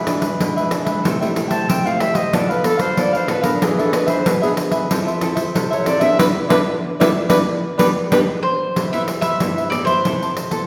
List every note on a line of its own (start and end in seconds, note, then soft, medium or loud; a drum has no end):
0.00 0.36 B2 medium
0.00 0.21 G#4 medium
0.00 0.20 B4 medium
0.00 0.19 E5 medium
0.07 0.26 E3 medium
0.07 0.26 G#3 medium
0.07 0.27 D4 medium
0.07 pandeiro medium
0.20 0.54 G#4 medium
0.20 0.54 B4 medium
0.20 0.53 E5 medium
0.20 pandeiro medium
0.40 1.01 B2 medium
0.40 0.67 E3 medium
0.40 0.67 G#3 medium
0.40 0.67 D4 medium
0.40 pandeiro medium
0.57 0.70 G#4 medium
0.57 0.71 B4 medium
0.57 0.71 E5 medium
0.57 pandeiro soft
0.71 1.01 E3 medium
0.71 1.02 G#3 medium
0.71 0.86 D4 soft
0.71 1.02 D4 medium
0.71 0.86 G#4 medium
0.71 0.85 B4 soft
0.71 0.84 E5 medium
0.71 pandeiro medium
0.85 1.02 G#4 medium
0.85 1.02 B4 medium
0.85 1.01 E5 medium
0.85 pandeiro medium
1.03 1.66 C3 medium
1.03 1.15 G3 medium
1.03 1.16 A3 medium
1.03 1.16 E4 medium
1.03 1.19 A4 medium
1.03 1.19 C5 medium
1.03 1.19 E5 medium
1.03 1.19 G5 medium
1.03 pandeiro medium
1.20 1.32 G3 medium
1.20 1.32 A3 medium
1.20 1.32 E4 medium
1.20 1.33 C5 medium
1.20 1.33 E5 medium
1.20 1.33 G5 medium
1.20 pandeiro soft
1.34 1.66 G3 medium
1.34 1.66 A3 medium
1.34 1.67 E4 medium
1.34 muted cavaquinho stroke soft
1.34 pandeiro medium
1.48 1.66 C5 medium
1.48 1.66 E5 medium
1.48 1.65 G5 medium
1.48 1.71 A5 medium
1.48 pandeiro medium
1.67 2.30 C3 medium
1.67 1.83 A4 soft
1.67 1.83 C5 medium
1.67 1.83 E5 medium
1.67 1.83 G5 medium
1.67 1.87 G5 medium
1.67 pandeiro medium
1.84 2.28 G3 medium
1.84 2.29 A3 medium
1.84 2.29 E4 medium
1.84 1.98 C5 medium
1.84 1.98 E5 medium
1.84 2.02 F5 medium
1.84 1.98 G5 medium
1.84 pandeiro soft
1.99 2.18 E5 medium
1.99 muted cavaquinho stroke soft
1.99 pandeiro medium
2.14 2.31 C5 medium
2.14 2.36 D#5 medium
2.14 2.31 E5 medium
2.14 2.30 G5 medium
2.14 pandeiro medium
2.32 2.94 D3 medium
2.32 2.60 B3 medium
2.32 2.47 D4 soft
2.32 2.60 F4 medium
2.32 2.48 A4 medium
2.32 2.61 A4 medium
2.32 2.48 B4 medium
2.32 2.53 D5 medium
2.32 2.47 F5 medium
2.32 pandeiro medium
2.49 2.78 A4 medium
2.49 2.77 B4 medium
2.49 2.67 B4 medium
2.49 2.76 F5 medium
2.49 pandeiro soft
2.64 2.92 B3 medium
2.64 2.92 F4 medium
2.64 2.92 A4 medium
2.64 2.82 A4 loud
2.64 pandeiro medium
2.77 3.11 A4 medium
2.77 3.11 B4 medium
2.77 3.01 C5 medium
2.77 3.10 F5 medium
2.77 pandeiro medium
2.97 3.59 D3 medium
2.97 3.25 B3 medium
2.97 3.25 F4 medium
2.97 3.25 A4 medium
2.97 3.18 D5 loud
2.97 pandeiro medium
3.13 3.26 A4 medium
3.13 3.27 B4 medium
3.13 3.31 C5 medium
3.13 3.28 F5 medium
3.13 pandeiro soft
3.27 3.39 B3 medium
3.27 3.43 D4 medium
3.27 3.39 F4 medium
3.27 3.42 A4 medium
3.27 3.39 A4 medium
3.27 3.42 B4 medium
3.27 3.46 B4 loud
3.27 3.40 F5 medium
3.27 pandeiro medium
3.42 3.72 B3 medium
3.42 3.72 D4 medium
3.42 3.72 G#4 medium
3.42 3.60 A4 medium
3.42 3.65 A#4 medium
3.42 3.59 B4 medium
3.42 3.59 F5 medium
3.42 pandeiro medium
3.61 4.23 E3 medium
3.61 3.76 D4 soft
3.61 3.76 G#4 medium
3.61 3.81 G#4 medium
3.61 3.77 B4 medium
3.61 3.77 E5 medium
3.61 pandeiro medium
3.79 3.89 B3 medium
3.79 3.89 D4 medium
3.79 3.90 G#4 medium
3.79 3.92 G#4 medium
3.79 3.95 A4 medium
3.79 3.92 B4 medium
3.79 3.92 E5 medium
3.79 pandeiro soft
3.93 4.24 B3 medium
3.93 4.24 D4 medium
3.93 4.24 G#4 medium
3.93 4.10 B4 medium
3.93 pandeiro medium
4.06 4.24 G#4 medium
4.06 4.24 B4 medium
4.06 4.29 C5 medium
4.06 4.23 E5 medium
4.06 pandeiro medium
4.25 4.87 B2 medium
4.25 4.40 D4 soft
4.25 4.41 G#4 soft
4.25 4.41 B4 medium
4.25 4.43 B4 medium
4.25 4.40 E5 medium
4.25 pandeiro medium
4.42 4.86 B3 medium
4.42 4.86 D4 medium
4.42 4.53 G#4 medium
4.42 4.55 G#4 medium
4.42 4.86 G#4 medium
4.42 4.56 B4 medium
4.42 4.56 E5 medium
4.42 pandeiro soft
4.56 muted cavaquinho stroke soft
4.56 pandeiro medium
4.71 4.89 G#4 medium
4.71 4.88 B4 medium
4.71 4.88 E5 medium
4.71 pandeiro medium
4.90 5.52 F3 medium
4.90 5.09 C4 medium
4.90 5.10 E4 medium
4.90 5.05 F4 soft
4.90 5.10 A4 medium
4.90 5.06 A4 soft
4.90 5.06 C5 medium
4.90 5.06 E5 medium
4.90 pandeiro medium
5.07 5.36 A4 medium
5.07 5.35 C5 medium
5.07 5.34 E5 medium
5.07 pandeiro soft
5.21 5.41 C4 medium
5.21 5.41 E4 medium
5.21 5.42 A4 medium
5.21 pandeiro medium
5.35 5.69 A4 medium
5.35 5.69 C5 medium
5.35 5.68 E5 medium
5.35 pandeiro medium
5.55 6.16 C3 medium
5.55 5.82 C4 medium
5.55 5.82 E4 medium
5.55 5.82 A4 medium
5.55 pandeiro medium
5.70 5.83 A4 medium
5.70 5.84 C5 medium
5.70 5.89 C#5 medium
5.70 5.85 E5 medium
5.70 pandeiro soft
5.84 5.96 C4 medium
5.84 5.97 E4 medium
5.84 6.00 F4 medium
5.84 6.00 A4 medium
5.84 5.97 A4 medium
5.84 5.99 C5 medium
5.84 6.04 D5 loud
5.84 5.98 E5 medium
5.84 pandeiro medium
5.99 6.18 B3 medium
5.99 6.18 D4 medium
5.99 6.19 G#4 medium
5.99 6.17 A4 medium
5.99 6.16 C5 medium
5.99 6.16 E5 medium
5.99 6.19 E5 loud
5.99 pandeiro medium
6.18 6.30 B3 loud
6.18 6.30 D4 loud
6.18 6.30 E4 loud
6.18 6.29 B4 loud
6.18 6.27 B4 loud
6.18 6.29 D5 medium
6.18 6.29 E5 medium
6.18 pandeiro loud
6.49 6.61 B3 medium
6.49 6.61 D4 loud
6.49 6.61 E4 loud
6.49 6.60 B4 medium
6.49 6.58 B4 loud
6.49 6.60 D5 loud
6.49 6.60 E5 loud
6.49 pandeiro loud
7.00 7.11 B3 medium
7.00 7.10 D4 loud
7.00 7.10 E4 loud
7.00 7.08 B4 loud
7.00 7.10 B4 medium
7.00 7.10 D5 loud
7.00 7.10 E5 loud
7.00 pandeiro loud
7.29 7.41 B3 loud
7.29 7.41 D4 medium
7.29 7.41 E4 medium
7.29 7.40 B4 medium
7.29 7.38 B4 loud
7.29 7.41 D5 loud
7.29 7.41 E5 medium
7.29 pandeiro loud
7.78 7.90 G3 loud
7.78 7.90 B3 loud
7.78 7.90 D4 loud
7.78 7.89 G4 medium
7.78 7.89 B4 loud
7.78 7.87 B4 loud
7.78 7.89 D5 loud
7.78 pandeiro medium
8.12 8.22 G3 loud
8.12 8.23 B3 medium
8.12 8.22 D4 loud
8.12 8.23 G4 loud
8.12 8.23 B4 medium
8.12 8.20 B4 loud
8.12 8.22 D5 medium
8.12 pandeiro loud
8.43 8.93 C5 medium
8.76 9.38 C3 medium
8.76 8.91 G4 soft
8.76 8.92 B4 medium
8.76 8.92 C5 soft
8.76 8.91 E5 medium
8.76 pandeiro medium
8.92 9.36 G3 medium
8.92 9.36 B3 medium
8.92 9.36 E4 medium
8.92 9.07 B4 medium
8.92 9.06 C5 medium
8.92 9.07 E5 medium
8.92 9.02 E5 medium
8.92 pandeiro soft
9.07 muted cavaquinho stroke soft
9.07 pandeiro medium
9.21 9.39 B4 medium
9.21 9.39 C5 medium
9.21 9.38 E5 medium
9.21 9.68 E5 medium
9.21 pandeiro medium
9.40 10.02 G2 medium
9.40 9.68 G3 medium
9.40 9.69 B3 medium
9.40 9.69 E4 medium
9.40 9.56 G4 soft
9.40 9.56 B4 soft
9.40 9.56 C5 soft
9.40 9.56 E5 soft
9.40 pandeiro medium
9.58 9.71 B4 medium
9.58 9.71 C5 medium
9.58 9.72 E5 medium
9.58 pandeiro soft
9.70 9.92 G3 medium
9.70 9.92 B3 medium
9.70 9.92 E4 medium
9.70 9.84 D5 medium
9.70 muted cavaquinho stroke soft
9.70 pandeiro medium
9.85 10.03 B4 medium
9.85 10.67 C5 medium
9.85 10.04 C5 medium
9.85 10.03 E5 medium
9.85 pandeiro medium
10.05 10.67 C3 medium
10.05 10.36 E4 medium
10.05 10.20 A4 soft
10.05 10.37 A4 medium
10.05 10.21 B4 medium
10.05 10.21 C5 soft
10.05 10.21 A5 medium
10.05 pandeiro medium
10.22 10.52 C5 medium
10.22 10.50 A5 medium
10.22 pandeiro soft
10.37 pandeiro medium
10.51 10.67 B3 medium
10.51 10.67 E4 medium
10.51 10.67 A4 medium
10.51 10.67 C5 medium
10.51 10.67 A5 medium
10.51 pandeiro medium